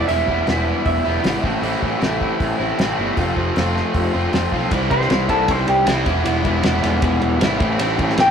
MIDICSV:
0, 0, Header, 1, 5, 480
1, 0, Start_track
1, 0, Key_signature, 0, "major"
1, 0, Tempo, 385109
1, 108, Time_signature, 4, 2, 24, 8
1, 10354, End_track
2, 0, Start_track
2, 0, Title_t, "Clean electric guitar"
2, 0, Program_c, 0, 27
2, 7, Note_on_c, 0, 74, 74
2, 94, Note_off_c, 0, 74, 0
2, 99, Note_on_c, 0, 76, 88
2, 1055, Note_off_c, 0, 76, 0
2, 1070, Note_on_c, 0, 76, 69
2, 1741, Note_off_c, 0, 76, 0
2, 6112, Note_on_c, 0, 72, 78
2, 6580, Note_off_c, 0, 72, 0
2, 6603, Note_on_c, 0, 69, 74
2, 6867, Note_off_c, 0, 69, 0
2, 6867, Note_on_c, 0, 72, 75
2, 7085, Note_off_c, 0, 72, 0
2, 7091, Note_on_c, 0, 67, 79
2, 7321, Note_off_c, 0, 67, 0
2, 7321, Note_on_c, 0, 64, 85
2, 8713, Note_off_c, 0, 64, 0
2, 10225, Note_on_c, 0, 79, 92
2, 10354, Note_off_c, 0, 79, 0
2, 10354, End_track
3, 0, Start_track
3, 0, Title_t, "Overdriven electric guitar"
3, 0, Program_c, 1, 29
3, 0, Note_on_c, 1, 64, 75
3, 105, Note_on_c, 1, 52, 79
3, 122, Note_on_c, 1, 55, 91
3, 130, Note_on_c, 1, 59, 80
3, 140, Note_off_c, 1, 64, 0
3, 145, Note_on_c, 1, 64, 78
3, 344, Note_off_c, 1, 64, 0
3, 349, Note_off_c, 1, 59, 0
3, 349, Note_on_c, 1, 64, 68
3, 364, Note_on_c, 1, 59, 58
3, 381, Note_off_c, 1, 55, 0
3, 386, Note_on_c, 1, 55, 55
3, 580, Note_off_c, 1, 52, 0
3, 585, Note_on_c, 1, 52, 64
3, 595, Note_off_c, 1, 59, 0
3, 599, Note_off_c, 1, 55, 0
3, 604, Note_on_c, 1, 55, 68
3, 610, Note_on_c, 1, 59, 68
3, 618, Note_off_c, 1, 64, 0
3, 623, Note_on_c, 1, 64, 70
3, 1300, Note_off_c, 1, 64, 0
3, 1305, Note_on_c, 1, 64, 58
3, 1313, Note_off_c, 1, 59, 0
3, 1328, Note_on_c, 1, 59, 59
3, 1329, Note_off_c, 1, 55, 0
3, 1344, Note_on_c, 1, 55, 52
3, 1532, Note_off_c, 1, 55, 0
3, 1534, Note_off_c, 1, 52, 0
3, 1539, Note_on_c, 1, 52, 74
3, 1547, Note_off_c, 1, 59, 0
3, 1547, Note_on_c, 1, 55, 77
3, 1562, Note_on_c, 1, 59, 75
3, 1568, Note_off_c, 1, 64, 0
3, 1573, Note_on_c, 1, 64, 70
3, 1771, Note_off_c, 1, 64, 0
3, 1775, Note_off_c, 1, 55, 0
3, 1776, Note_on_c, 1, 64, 73
3, 1782, Note_off_c, 1, 59, 0
3, 1789, Note_on_c, 1, 60, 68
3, 1799, Note_on_c, 1, 57, 68
3, 1802, Note_off_c, 1, 52, 0
3, 1807, Note_on_c, 1, 52, 61
3, 1811, Note_on_c, 1, 45, 58
3, 1997, Note_off_c, 1, 45, 0
3, 2012, Note_on_c, 1, 45, 78
3, 2014, Note_off_c, 1, 52, 0
3, 2019, Note_on_c, 1, 52, 86
3, 2024, Note_off_c, 1, 57, 0
3, 2029, Note_on_c, 1, 57, 77
3, 2036, Note_off_c, 1, 60, 0
3, 2041, Note_on_c, 1, 60, 82
3, 2042, Note_off_c, 1, 64, 0
3, 2047, Note_on_c, 1, 64, 94
3, 2258, Note_off_c, 1, 64, 0
3, 2263, Note_on_c, 1, 64, 62
3, 2278, Note_off_c, 1, 60, 0
3, 2283, Note_on_c, 1, 60, 55
3, 2294, Note_off_c, 1, 57, 0
3, 2299, Note_on_c, 1, 57, 49
3, 2494, Note_off_c, 1, 52, 0
3, 2499, Note_on_c, 1, 52, 64
3, 2503, Note_off_c, 1, 45, 0
3, 2510, Note_off_c, 1, 57, 0
3, 2515, Note_on_c, 1, 57, 69
3, 2524, Note_off_c, 1, 60, 0
3, 2529, Note_on_c, 1, 60, 69
3, 2534, Note_off_c, 1, 64, 0
3, 2539, Note_on_c, 1, 64, 86
3, 3219, Note_off_c, 1, 64, 0
3, 3224, Note_on_c, 1, 64, 63
3, 3241, Note_off_c, 1, 60, 0
3, 3246, Note_on_c, 1, 60, 53
3, 3256, Note_off_c, 1, 57, 0
3, 3261, Note_on_c, 1, 57, 51
3, 3462, Note_on_c, 1, 45, 59
3, 3470, Note_off_c, 1, 52, 0
3, 3475, Note_on_c, 1, 52, 68
3, 3481, Note_off_c, 1, 57, 0
3, 3486, Note_off_c, 1, 60, 0
3, 3486, Note_on_c, 1, 57, 73
3, 3491, Note_on_c, 1, 60, 79
3, 3494, Note_off_c, 1, 64, 0
3, 3499, Note_on_c, 1, 64, 77
3, 3695, Note_off_c, 1, 64, 0
3, 3700, Note_on_c, 1, 64, 65
3, 3717, Note_off_c, 1, 60, 0
3, 3722, Note_on_c, 1, 60, 56
3, 3734, Note_off_c, 1, 57, 0
3, 3739, Note_on_c, 1, 57, 49
3, 3935, Note_off_c, 1, 45, 0
3, 3941, Note_off_c, 1, 52, 0
3, 3946, Note_on_c, 1, 53, 86
3, 3955, Note_off_c, 1, 57, 0
3, 3960, Note_on_c, 1, 57, 89
3, 3967, Note_off_c, 1, 60, 0
3, 3972, Note_on_c, 1, 60, 90
3, 3976, Note_off_c, 1, 64, 0
3, 3981, Note_on_c, 1, 65, 92
3, 4177, Note_off_c, 1, 65, 0
3, 4192, Note_on_c, 1, 65, 60
3, 4197, Note_off_c, 1, 60, 0
3, 4211, Note_off_c, 1, 57, 0
3, 4212, Note_on_c, 1, 60, 60
3, 4226, Note_on_c, 1, 57, 53
3, 4417, Note_off_c, 1, 53, 0
3, 4432, Note_off_c, 1, 57, 0
3, 4432, Note_on_c, 1, 53, 66
3, 4444, Note_off_c, 1, 60, 0
3, 4447, Note_on_c, 1, 57, 72
3, 4458, Note_off_c, 1, 65, 0
3, 4458, Note_on_c, 1, 60, 74
3, 4473, Note_on_c, 1, 65, 73
3, 5135, Note_off_c, 1, 65, 0
3, 5150, Note_on_c, 1, 65, 56
3, 5156, Note_off_c, 1, 60, 0
3, 5171, Note_on_c, 1, 60, 47
3, 5173, Note_off_c, 1, 57, 0
3, 5188, Note_on_c, 1, 57, 44
3, 5376, Note_off_c, 1, 53, 0
3, 5390, Note_off_c, 1, 57, 0
3, 5391, Note_on_c, 1, 53, 72
3, 5404, Note_off_c, 1, 60, 0
3, 5405, Note_on_c, 1, 57, 73
3, 5416, Note_off_c, 1, 65, 0
3, 5419, Note_on_c, 1, 60, 71
3, 5431, Note_on_c, 1, 65, 72
3, 5622, Note_off_c, 1, 65, 0
3, 5636, Note_on_c, 1, 65, 66
3, 5642, Note_off_c, 1, 60, 0
3, 5657, Note_on_c, 1, 60, 50
3, 5662, Note_off_c, 1, 57, 0
3, 5677, Note_on_c, 1, 57, 47
3, 5860, Note_off_c, 1, 53, 0
3, 5863, Note_off_c, 1, 65, 0
3, 5869, Note_on_c, 1, 48, 78
3, 5873, Note_off_c, 1, 60, 0
3, 5883, Note_off_c, 1, 57, 0
3, 5883, Note_on_c, 1, 52, 97
3, 5892, Note_on_c, 1, 55, 87
3, 5902, Note_on_c, 1, 60, 84
3, 5907, Note_on_c, 1, 64, 99
3, 6102, Note_off_c, 1, 64, 0
3, 6107, Note_on_c, 1, 64, 65
3, 6110, Note_off_c, 1, 60, 0
3, 6125, Note_on_c, 1, 60, 60
3, 6141, Note_off_c, 1, 55, 0
3, 6146, Note_on_c, 1, 55, 60
3, 6332, Note_off_c, 1, 48, 0
3, 6347, Note_on_c, 1, 48, 83
3, 6352, Note_off_c, 1, 52, 0
3, 6357, Note_on_c, 1, 52, 88
3, 6361, Note_off_c, 1, 55, 0
3, 6362, Note_off_c, 1, 60, 0
3, 6366, Note_on_c, 1, 55, 86
3, 6377, Note_on_c, 1, 60, 105
3, 6380, Note_off_c, 1, 64, 0
3, 6385, Note_on_c, 1, 64, 108
3, 6573, Note_off_c, 1, 64, 0
3, 6578, Note_on_c, 1, 64, 70
3, 6587, Note_off_c, 1, 60, 0
3, 6602, Note_on_c, 1, 60, 58
3, 6615, Note_off_c, 1, 55, 0
3, 6620, Note_on_c, 1, 55, 58
3, 6832, Note_off_c, 1, 48, 0
3, 7301, Note_off_c, 1, 52, 0
3, 7306, Note_on_c, 1, 52, 60
3, 7318, Note_off_c, 1, 55, 0
3, 7321, Note_off_c, 1, 60, 0
3, 7323, Note_on_c, 1, 55, 63
3, 7336, Note_on_c, 1, 60, 71
3, 7341, Note_off_c, 1, 64, 0
3, 7346, Note_on_c, 1, 64, 64
3, 7537, Note_off_c, 1, 64, 0
3, 7542, Note_on_c, 1, 64, 90
3, 7552, Note_off_c, 1, 60, 0
3, 7562, Note_on_c, 1, 59, 77
3, 7566, Note_off_c, 1, 55, 0
3, 7571, Note_on_c, 1, 55, 65
3, 7578, Note_off_c, 1, 52, 0
3, 7583, Note_on_c, 1, 52, 70
3, 7776, Note_off_c, 1, 52, 0
3, 7781, Note_on_c, 1, 52, 89
3, 7791, Note_off_c, 1, 55, 0
3, 7791, Note_off_c, 1, 59, 0
3, 7796, Note_on_c, 1, 55, 90
3, 7806, Note_on_c, 1, 59, 98
3, 7809, Note_off_c, 1, 64, 0
3, 7814, Note_on_c, 1, 64, 106
3, 8015, Note_off_c, 1, 64, 0
3, 8020, Note_on_c, 1, 64, 67
3, 8028, Note_off_c, 1, 59, 0
3, 8043, Note_on_c, 1, 59, 60
3, 8051, Note_off_c, 1, 55, 0
3, 8056, Note_on_c, 1, 55, 52
3, 8252, Note_off_c, 1, 52, 0
3, 8257, Note_on_c, 1, 52, 87
3, 8267, Note_off_c, 1, 55, 0
3, 8270, Note_off_c, 1, 59, 0
3, 8272, Note_on_c, 1, 55, 94
3, 8285, Note_on_c, 1, 59, 99
3, 8288, Note_off_c, 1, 64, 0
3, 8293, Note_on_c, 1, 64, 106
3, 8494, Note_off_c, 1, 64, 0
3, 8499, Note_on_c, 1, 64, 63
3, 8506, Note_off_c, 1, 59, 0
3, 8521, Note_on_c, 1, 59, 74
3, 8532, Note_off_c, 1, 55, 0
3, 8537, Note_on_c, 1, 55, 55
3, 9216, Note_off_c, 1, 52, 0
3, 9221, Note_on_c, 1, 52, 67
3, 9225, Note_off_c, 1, 55, 0
3, 9233, Note_off_c, 1, 59, 0
3, 9240, Note_on_c, 1, 55, 78
3, 9248, Note_on_c, 1, 59, 59
3, 9260, Note_off_c, 1, 64, 0
3, 9265, Note_on_c, 1, 64, 77
3, 9451, Note_off_c, 1, 64, 0
3, 9456, Note_on_c, 1, 64, 84
3, 9461, Note_off_c, 1, 55, 0
3, 9461, Note_off_c, 1, 59, 0
3, 9466, Note_on_c, 1, 60, 82
3, 9477, Note_on_c, 1, 57, 87
3, 9480, Note_off_c, 1, 52, 0
3, 9485, Note_on_c, 1, 52, 62
3, 9494, Note_on_c, 1, 45, 64
3, 9686, Note_off_c, 1, 45, 0
3, 9701, Note_on_c, 1, 45, 86
3, 9709, Note_off_c, 1, 52, 0
3, 9714, Note_on_c, 1, 52, 77
3, 9716, Note_off_c, 1, 57, 0
3, 9721, Note_on_c, 1, 57, 99
3, 9726, Note_off_c, 1, 60, 0
3, 9731, Note_on_c, 1, 60, 89
3, 9737, Note_off_c, 1, 64, 0
3, 9742, Note_on_c, 1, 64, 105
3, 9944, Note_off_c, 1, 64, 0
3, 9949, Note_on_c, 1, 64, 67
3, 9963, Note_off_c, 1, 60, 0
3, 9968, Note_on_c, 1, 60, 73
3, 9984, Note_off_c, 1, 57, 0
3, 9989, Note_on_c, 1, 57, 63
3, 10169, Note_off_c, 1, 45, 0
3, 10184, Note_on_c, 1, 45, 86
3, 10190, Note_off_c, 1, 52, 0
3, 10195, Note_on_c, 1, 52, 98
3, 10196, Note_off_c, 1, 57, 0
3, 10201, Note_on_c, 1, 57, 94
3, 10207, Note_off_c, 1, 60, 0
3, 10212, Note_on_c, 1, 60, 112
3, 10214, Note_off_c, 1, 64, 0
3, 10219, Note_on_c, 1, 64, 110
3, 10354, Note_off_c, 1, 45, 0
3, 10354, Note_off_c, 1, 52, 0
3, 10354, Note_off_c, 1, 57, 0
3, 10354, Note_off_c, 1, 60, 0
3, 10354, Note_off_c, 1, 64, 0
3, 10354, End_track
4, 0, Start_track
4, 0, Title_t, "Picked electric bass"
4, 0, Program_c, 2, 34
4, 108, Note_on_c, 2, 28, 79
4, 258, Note_off_c, 2, 28, 0
4, 354, Note_on_c, 2, 28, 60
4, 503, Note_off_c, 2, 28, 0
4, 586, Note_on_c, 2, 28, 69
4, 888, Note_off_c, 2, 28, 0
4, 1068, Note_on_c, 2, 28, 75
4, 1219, Note_off_c, 2, 28, 0
4, 1313, Note_on_c, 2, 28, 69
4, 1462, Note_off_c, 2, 28, 0
4, 1549, Note_on_c, 2, 32, 78
4, 1700, Note_off_c, 2, 32, 0
4, 1790, Note_on_c, 2, 33, 72
4, 1941, Note_off_c, 2, 33, 0
4, 2017, Note_on_c, 2, 33, 84
4, 2172, Note_off_c, 2, 33, 0
4, 2280, Note_on_c, 2, 33, 66
4, 2428, Note_off_c, 2, 33, 0
4, 2518, Note_on_c, 2, 33, 65
4, 2817, Note_off_c, 2, 33, 0
4, 2994, Note_on_c, 2, 33, 68
4, 3145, Note_off_c, 2, 33, 0
4, 3237, Note_on_c, 2, 33, 77
4, 3387, Note_off_c, 2, 33, 0
4, 3485, Note_on_c, 2, 33, 73
4, 3632, Note_off_c, 2, 33, 0
4, 3720, Note_on_c, 2, 31, 71
4, 3869, Note_off_c, 2, 31, 0
4, 3955, Note_on_c, 2, 29, 80
4, 4106, Note_off_c, 2, 29, 0
4, 4195, Note_on_c, 2, 29, 60
4, 4346, Note_off_c, 2, 29, 0
4, 4444, Note_on_c, 2, 29, 73
4, 4742, Note_off_c, 2, 29, 0
4, 4918, Note_on_c, 2, 29, 77
4, 5068, Note_off_c, 2, 29, 0
4, 5164, Note_on_c, 2, 29, 77
4, 5312, Note_off_c, 2, 29, 0
4, 5400, Note_on_c, 2, 29, 71
4, 5550, Note_off_c, 2, 29, 0
4, 5640, Note_on_c, 2, 35, 67
4, 5789, Note_off_c, 2, 35, 0
4, 5878, Note_on_c, 2, 36, 84
4, 6097, Note_off_c, 2, 36, 0
4, 6114, Note_on_c, 2, 36, 70
4, 6335, Note_off_c, 2, 36, 0
4, 6347, Note_on_c, 2, 36, 70
4, 6571, Note_off_c, 2, 36, 0
4, 6598, Note_on_c, 2, 36, 81
4, 6817, Note_off_c, 2, 36, 0
4, 6839, Note_on_c, 2, 36, 82
4, 7057, Note_off_c, 2, 36, 0
4, 7074, Note_on_c, 2, 36, 71
4, 7294, Note_off_c, 2, 36, 0
4, 7319, Note_on_c, 2, 36, 78
4, 7537, Note_off_c, 2, 36, 0
4, 7557, Note_on_c, 2, 28, 73
4, 7776, Note_off_c, 2, 28, 0
4, 7789, Note_on_c, 2, 28, 81
4, 8011, Note_off_c, 2, 28, 0
4, 8040, Note_on_c, 2, 28, 75
4, 8257, Note_off_c, 2, 28, 0
4, 8273, Note_on_c, 2, 28, 82
4, 8493, Note_off_c, 2, 28, 0
4, 8507, Note_on_c, 2, 28, 85
4, 8729, Note_off_c, 2, 28, 0
4, 8753, Note_on_c, 2, 28, 83
4, 8972, Note_off_c, 2, 28, 0
4, 8986, Note_on_c, 2, 28, 78
4, 9208, Note_off_c, 2, 28, 0
4, 9231, Note_on_c, 2, 32, 86
4, 9450, Note_off_c, 2, 32, 0
4, 9478, Note_on_c, 2, 33, 74
4, 9694, Note_off_c, 2, 33, 0
4, 9716, Note_on_c, 2, 33, 87
4, 9933, Note_off_c, 2, 33, 0
4, 9961, Note_on_c, 2, 33, 83
4, 10175, Note_off_c, 2, 33, 0
4, 10195, Note_on_c, 2, 33, 86
4, 10354, Note_off_c, 2, 33, 0
4, 10354, End_track
5, 0, Start_track
5, 0, Title_t, "Drums"
5, 106, Note_on_c, 9, 46, 46
5, 231, Note_off_c, 9, 46, 0
5, 348, Note_on_c, 9, 36, 64
5, 473, Note_off_c, 9, 36, 0
5, 585, Note_on_c, 9, 46, 35
5, 599, Note_on_c, 9, 38, 75
5, 710, Note_off_c, 9, 46, 0
5, 724, Note_off_c, 9, 38, 0
5, 1067, Note_on_c, 9, 46, 37
5, 1068, Note_on_c, 9, 36, 93
5, 1192, Note_off_c, 9, 46, 0
5, 1193, Note_off_c, 9, 36, 0
5, 1547, Note_on_c, 9, 46, 50
5, 1560, Note_on_c, 9, 38, 106
5, 1671, Note_off_c, 9, 46, 0
5, 1685, Note_off_c, 9, 38, 0
5, 1791, Note_on_c, 9, 36, 89
5, 1916, Note_off_c, 9, 36, 0
5, 2035, Note_on_c, 9, 46, 44
5, 2160, Note_off_c, 9, 46, 0
5, 2274, Note_on_c, 9, 36, 75
5, 2399, Note_off_c, 9, 36, 0
5, 2511, Note_on_c, 9, 46, 34
5, 2525, Note_on_c, 9, 38, 85
5, 2636, Note_off_c, 9, 46, 0
5, 2649, Note_off_c, 9, 38, 0
5, 2754, Note_on_c, 9, 36, 65
5, 2879, Note_off_c, 9, 36, 0
5, 2994, Note_on_c, 9, 36, 94
5, 2994, Note_on_c, 9, 46, 46
5, 3118, Note_off_c, 9, 46, 0
5, 3119, Note_off_c, 9, 36, 0
5, 3473, Note_on_c, 9, 46, 47
5, 3487, Note_on_c, 9, 38, 103
5, 3598, Note_off_c, 9, 46, 0
5, 3612, Note_off_c, 9, 38, 0
5, 3953, Note_on_c, 9, 46, 49
5, 3954, Note_on_c, 9, 36, 101
5, 4077, Note_off_c, 9, 46, 0
5, 4079, Note_off_c, 9, 36, 0
5, 4195, Note_on_c, 9, 36, 70
5, 4320, Note_off_c, 9, 36, 0
5, 4435, Note_on_c, 9, 46, 36
5, 4449, Note_on_c, 9, 38, 81
5, 4560, Note_off_c, 9, 46, 0
5, 4574, Note_off_c, 9, 38, 0
5, 4696, Note_on_c, 9, 38, 26
5, 4820, Note_off_c, 9, 38, 0
5, 4916, Note_on_c, 9, 46, 45
5, 4917, Note_on_c, 9, 36, 94
5, 5041, Note_off_c, 9, 36, 0
5, 5041, Note_off_c, 9, 46, 0
5, 5396, Note_on_c, 9, 46, 46
5, 5410, Note_on_c, 9, 38, 102
5, 5521, Note_off_c, 9, 46, 0
5, 5535, Note_off_c, 9, 38, 0
5, 5636, Note_on_c, 9, 36, 72
5, 5761, Note_off_c, 9, 36, 0
5, 5875, Note_on_c, 9, 36, 108
5, 5875, Note_on_c, 9, 51, 93
5, 5999, Note_off_c, 9, 51, 0
5, 6000, Note_off_c, 9, 36, 0
5, 6115, Note_on_c, 9, 36, 76
5, 6119, Note_on_c, 9, 51, 58
5, 6240, Note_off_c, 9, 36, 0
5, 6243, Note_off_c, 9, 51, 0
5, 6248, Note_on_c, 9, 38, 28
5, 6355, Note_on_c, 9, 51, 67
5, 6369, Note_off_c, 9, 38, 0
5, 6369, Note_on_c, 9, 38, 89
5, 6480, Note_off_c, 9, 51, 0
5, 6493, Note_off_c, 9, 38, 0
5, 6594, Note_on_c, 9, 36, 70
5, 6594, Note_on_c, 9, 51, 72
5, 6719, Note_off_c, 9, 36, 0
5, 6719, Note_off_c, 9, 51, 0
5, 6835, Note_on_c, 9, 36, 109
5, 6835, Note_on_c, 9, 51, 88
5, 6959, Note_off_c, 9, 51, 0
5, 6960, Note_off_c, 9, 36, 0
5, 7074, Note_on_c, 9, 51, 58
5, 7198, Note_off_c, 9, 51, 0
5, 7312, Note_on_c, 9, 51, 102
5, 7326, Note_on_c, 9, 38, 104
5, 7437, Note_off_c, 9, 51, 0
5, 7451, Note_off_c, 9, 38, 0
5, 7554, Note_on_c, 9, 36, 100
5, 7554, Note_on_c, 9, 51, 67
5, 7679, Note_off_c, 9, 36, 0
5, 7679, Note_off_c, 9, 51, 0
5, 7796, Note_on_c, 9, 51, 91
5, 7921, Note_off_c, 9, 51, 0
5, 8035, Note_on_c, 9, 36, 78
5, 8036, Note_on_c, 9, 51, 61
5, 8159, Note_off_c, 9, 36, 0
5, 8160, Note_off_c, 9, 51, 0
5, 8268, Note_on_c, 9, 51, 77
5, 8282, Note_on_c, 9, 38, 98
5, 8393, Note_off_c, 9, 51, 0
5, 8407, Note_off_c, 9, 38, 0
5, 8520, Note_on_c, 9, 51, 66
5, 8534, Note_on_c, 9, 38, 26
5, 8645, Note_off_c, 9, 51, 0
5, 8658, Note_off_c, 9, 38, 0
5, 8751, Note_on_c, 9, 51, 88
5, 8755, Note_on_c, 9, 36, 109
5, 8875, Note_off_c, 9, 51, 0
5, 8879, Note_off_c, 9, 36, 0
5, 8994, Note_on_c, 9, 51, 54
5, 9118, Note_off_c, 9, 51, 0
5, 9236, Note_on_c, 9, 51, 87
5, 9250, Note_on_c, 9, 38, 119
5, 9361, Note_off_c, 9, 51, 0
5, 9375, Note_off_c, 9, 38, 0
5, 9475, Note_on_c, 9, 51, 68
5, 9478, Note_on_c, 9, 36, 108
5, 9600, Note_off_c, 9, 51, 0
5, 9603, Note_off_c, 9, 36, 0
5, 9714, Note_on_c, 9, 51, 100
5, 9838, Note_off_c, 9, 51, 0
5, 9957, Note_on_c, 9, 36, 82
5, 9958, Note_on_c, 9, 51, 65
5, 10081, Note_off_c, 9, 36, 0
5, 10083, Note_off_c, 9, 51, 0
5, 10091, Note_on_c, 9, 38, 29
5, 10190, Note_on_c, 9, 51, 86
5, 10203, Note_off_c, 9, 38, 0
5, 10203, Note_on_c, 9, 38, 77
5, 10314, Note_off_c, 9, 51, 0
5, 10328, Note_off_c, 9, 38, 0
5, 10354, End_track
0, 0, End_of_file